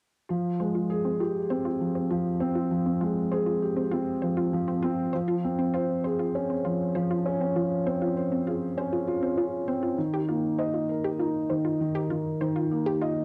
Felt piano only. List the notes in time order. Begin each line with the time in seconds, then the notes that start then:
0.30 F3
0.60 G#3
0.90 G#4
1.20 G4
1.50 C4
1.81 F3
2.11 F3
2.41 C4
2.71 F3
3.02 G#3
3.32 G#4
3.62 G4
3.93 C4
4.23 F3
4.53 F3
4.84 C4
5.14 F3
5.44 C4
5.74 C5
6.05 G#4
6.35 C#4
6.65 F3
6.96 F3
7.26 C#4
7.56 F3
7.86 C4
8.17 C5
8.47 G#4
8.77 C#4
9.07 F4
9.37 C#4
9.68 C4
9.98 D#3
10.28 A#3
10.58 D#5
10.89 A#4
11.20 D#4
11.50 D#3
11.80 D#3
12.11 D#3
12.41 D#3
12.71 A#3
13.02 D#5